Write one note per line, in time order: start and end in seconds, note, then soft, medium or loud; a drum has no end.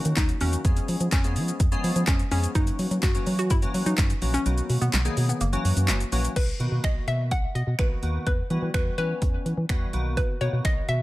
0.00 0.31 D#3 medium
0.00 0.31 F#3 medium
0.00 0.31 A#3 medium
0.00 0.31 C#4 medium
0.00 0.16 D#4 loud
0.00 0.31 F#4 loud
0.05 0.13 D#3 loud
0.05 closed hi-hat medium
0.05 shaker medium
0.17 0.33 D#2 loud
0.17 0.39 D#4 medium
0.17 kick loud
0.17 snare loud
0.17 clap loud
0.17 closed hi-hat medium
0.17 shaker medium
0.29 closed hi-hat medium
0.29 shaker medium
0.41 0.56 E2 medium
0.41 0.61 D#3 medium
0.41 0.61 F#3 medium
0.41 0.61 A#3 medium
0.41 1.11 C#4 loud
0.41 0.61 C#4 medium
0.41 0.61 F#4 medium
0.41 open hi-hat medium
0.41 shaker medium
0.53 closed hi-hat medium
0.53 shaker medium
0.65 0.80 F2 loud
0.65 1.14 F3 medium
0.65 1.14 G#3 medium
0.65 1.14 B3 medium
0.65 1.14 C#4 medium
0.65 1.14 G#4 medium
0.65 kick loud
0.65 closed hi-hat medium
0.65 shaker medium
0.77 closed hi-hat medium
0.77 shaker medium
0.88 0.96 F3 loud
0.88 open hi-hat medium
0.88 shaker soft
1.00 1.08 F3 loud
1.00 closed hi-hat medium
1.00 shaker medium
1.12 1.38 F2 loud
1.12 2.04 C#4 loud
1.12 kick loud
1.12 snare medium
1.12 clap loud
1.12 closed hi-hat medium
1.12 shaker medium
1.24 1.63 F3 medium
1.24 1.64 G#3 medium
1.24 1.64 B3 medium
1.24 1.64 C#4 medium
1.24 1.64 G#4 medium
1.24 closed hi-hat medium
1.24 shaker medium
1.36 1.52 F3 loud
1.36 open hi-hat medium
1.36 shaker medium
1.48 closed hi-hat medium
1.48 shaker medium
1.60 1.75 F2 loud
1.60 kick loud
1.60 closed hi-hat medium
1.60 shaker medium
1.72 2.21 F3 loud
1.72 2.21 G#3 loud
1.72 2.21 B3 loud
1.72 2.21 C#4 medium
1.72 2.21 G#4 loud
1.72 closed hi-hat soft
1.72 shaker soft
1.84 1.92 F3 loud
1.84 open hi-hat medium
1.84 shaker medium
1.96 2.04 F3 loud
1.96 closed hi-hat medium
1.96 shaker loud
2.07 2.23 F2 loud
2.07 2.30 C#4 medium
2.07 kick loud
2.07 snare loud
2.07 clap loud
2.07 closed hi-hat medium
2.07 shaker medium
2.19 closed hi-hat soft
2.19 shaker soft
2.31 2.47 F2 medium
2.31 2.51 F3 medium
2.31 2.51 G#3 medium
2.31 2.51 B3 medium
2.31 2.56 C#4 medium
2.31 2.51 C#4 medium
2.31 2.51 G#4 medium
2.31 open hi-hat medium
2.31 shaker medium
2.44 closed hi-hat medium
2.44 shaker medium
2.55 2.71 F#2 loud
2.55 3.04 E3 medium
2.55 3.04 F#3 medium
2.55 3.04 A#3 medium
2.55 3.04 C#4 medium
2.55 3.04 D#4 loud
2.55 3.05 F#4 medium
2.55 kick loud
2.55 closed hi-hat medium
2.55 shaker medium
2.67 closed hi-hat medium
2.67 shaker medium
2.79 2.87 F#3 loud
2.79 open hi-hat medium
2.79 shaker soft
2.91 2.99 F#3 loud
2.91 closed hi-hat medium
2.91 shaker medium
3.03 3.18 F#2 loud
3.03 3.38 F#4 loud
3.03 kick loud
3.03 snare loud
3.03 clap loud
3.03 closed hi-hat medium
3.03 shaker medium
3.15 3.54 E3 medium
3.15 3.54 F#3 medium
3.15 3.54 A#3 medium
3.15 3.54 C#4 medium
3.15 3.54 F#4 medium
3.15 closed hi-hat medium
3.15 shaker medium
3.27 3.52 F#3 loud
3.27 open hi-hat medium
3.27 shaker medium
3.39 3.51 F#4 medium
3.39 closed hi-hat medium
3.39 shaker medium
3.50 3.66 F#2 loud
3.50 3.87 E4 loud
3.50 kick loud
3.50 closed hi-hat medium
3.50 shaker medium
3.62 4.11 E3 medium
3.62 4.11 F#3 medium
3.62 4.11 A#3 medium
3.62 4.12 C#4 medium
3.62 4.12 F#4 loud
3.62 closed hi-hat soft
3.62 shaker soft
3.74 3.82 F#3 loud
3.74 open hi-hat medium
3.74 shaker medium
3.86 3.94 F#3 loud
3.86 4.35 D#4 medium
3.86 closed hi-hat medium
3.86 shaker medium
3.98 4.14 F#2 loud
3.98 kick loud
3.98 snare loud
3.98 clap loud
3.98 closed hi-hat medium
3.98 shaker medium
4.10 closed hi-hat soft
4.10 shaker medium
4.22 4.37 A#1 medium
4.22 4.41 E3 medium
4.22 4.41 F#3 medium
4.22 4.42 A#3 medium
4.22 4.42 C#4 medium
4.22 4.42 F#4 medium
4.22 open hi-hat medium
4.22 shaker medium
4.34 4.83 C#4 loud
4.34 closed hi-hat medium
4.34 shaker medium
4.45 4.61 B1 loud
4.45 4.95 D#3 medium
4.45 4.95 F#3 medium
4.45 4.95 A#3 medium
4.45 4.95 B3 medium
4.45 4.95 F#4 medium
4.45 closed hi-hat medium
4.45 shaker medium
4.58 closed hi-hat medium
4.58 shaker medium
4.70 4.77 B2 loud
4.70 open hi-hat medium
4.70 shaker soft
4.81 4.89 B2 loud
4.81 5.26 B3 medium
4.81 closed hi-hat medium
4.81 shaker medium
4.93 5.09 B1 loud
4.93 snare loud
4.93 clap loud
4.93 closed hi-hat medium
4.93 shaker medium
5.05 5.41 D#3 medium
5.05 5.41 F#3 medium
5.05 5.41 A#3 medium
5.05 5.41 B3 medium
5.05 5.41 G#4 medium
5.05 closed hi-hat medium
5.05 shaker medium
5.17 5.33 B2 loud
5.17 open hi-hat medium
5.17 shaker medium
5.29 5.41 B3 medium
5.29 closed hi-hat medium
5.29 shaker medium
5.41 5.56 F#1 loud
5.41 5.85 A#3 medium
5.41 closed hi-hat medium
5.41 shaker medium
5.53 6.02 E3 medium
5.53 6.02 F#3 medium
5.53 6.02 A#3 medium
5.53 6.02 C#4 medium
5.53 6.02 F#4 loud
5.53 closed hi-hat medium
5.53 shaker soft
5.65 5.72 F#2 loud
5.65 open hi-hat medium
5.65 shaker medium
5.77 5.90 F#2 loud
5.77 closed hi-hat medium
5.77 shaker medium
5.88 6.04 F#1 loud
5.88 snare medium
5.88 clap loud
5.88 closed hi-hat medium
5.88 shaker medium
6.00 closed hi-hat medium
6.00 shaker medium
6.12 6.28 A#1 medium
6.12 6.32 E3 medium
6.12 6.32 F#3 medium
6.12 6.32 A#3 medium
6.12 6.32 C#4 medium
6.12 6.32 F#4 loud
6.12 open hi-hat medium
6.12 shaker medium
6.25 closed hi-hat medium
6.25 shaker medium
6.36 6.52 B1 loud
6.36 6.85 B4 medium
6.36 kick loud
6.36 closed hi-hat medium
6.36 crash medium
6.60 6.68 B2 loud
6.60 7.38 D#3 medium
6.60 7.39 A#3 medium
6.60 7.39 B3 medium
6.60 7.39 F#4 medium
6.60 closed hi-hat soft
6.72 6.80 B2 loud
6.84 6.99 B1 loud
6.84 7.09 D#5 loud
6.84 finger snap loud
6.84 kick loud
6.84 closed hi-hat medium
7.07 7.33 B2 loud
7.07 7.30 E5 loud
7.07 closed hi-hat medium
7.31 7.47 B1 loud
7.31 7.56 F#5 loud
7.31 kick loud
7.31 closed hi-hat medium
7.55 7.63 B2 loud
7.55 7.77 D#5 medium
7.55 closed hi-hat medium
7.67 7.75 B2 loud
7.79 7.95 B1 medium
7.79 7.99 D#3 medium
7.79 7.99 A#3 medium
7.79 7.99 B3 medium
7.79 7.99 F#4 medium
7.79 8.25 B4 medium
7.79 finger snap loud
7.79 kick loud
7.79 closed hi-hat medium
8.03 8.18 D#2 medium
8.03 8.27 D#3 medium
8.03 8.27 A#3 medium
8.03 8.27 B3 medium
8.03 8.27 F#4 medium
8.03 closed hi-hat medium
8.27 8.42 E2 loud
8.27 8.73 B4 medium
8.27 kick loud
8.27 closed hi-hat medium
8.50 8.70 E3 medium
8.50 8.58 E3 loud
8.50 8.70 G3 medium
8.50 8.70 B3 medium
8.50 8.70 F#4 medium
8.50 closed hi-hat soft
8.62 8.70 E3 medium
8.74 8.90 E2 loud
8.74 8.94 E3 medium
8.74 8.94 G3 medium
8.74 8.94 B3 medium
8.74 8.94 F#4 medium
8.74 8.96 B4 medium
8.74 finger snap loud
8.74 kick loud
8.74 closed hi-hat medium
8.98 9.57 E3 medium
8.98 9.14 E3 loud
8.98 9.57 G3 medium
8.98 9.57 B3 medium
8.98 9.57 C#4 medium
8.98 9.89 B4 medium
8.98 closed hi-hat medium
9.22 9.37 E2 medium
9.22 kick loud
9.22 closed hi-hat medium
9.46 9.53 E3 loud
9.46 closed hi-hat medium
9.57 9.65 E3 loud
9.69 9.85 E2 medium
9.69 9.89 E3 loud
9.69 9.89 G3 medium
9.69 9.89 B3 medium
9.69 9.89 F#4 loud
9.69 finger snap loud
9.69 kick loud
9.69 closed hi-hat medium
9.93 10.24 B1 loud
9.93 10.33 D#3 medium
9.93 10.33 A#3 medium
9.93 10.33 B3 medium
9.93 10.33 F#4 loud
9.93 closed hi-hat medium
10.17 10.42 B4 medium
10.17 kick loud
10.17 closed hi-hat medium
10.41 10.49 B2 loud
10.41 11.02 D#3 medium
10.41 11.02 A#3 medium
10.41 11.02 B3 medium
10.41 11.02 F#4 medium
10.41 10.65 C#5 medium
10.41 closed hi-hat soft
10.53 10.61 B2 loud
10.65 10.80 B1 loud
10.65 10.87 D#5 loud
10.65 finger snap loud
10.65 kick loud
10.65 closed hi-hat medium
10.89 11.02 B2 loud
10.89 11.02 E5 loud
10.89 closed hi-hat medium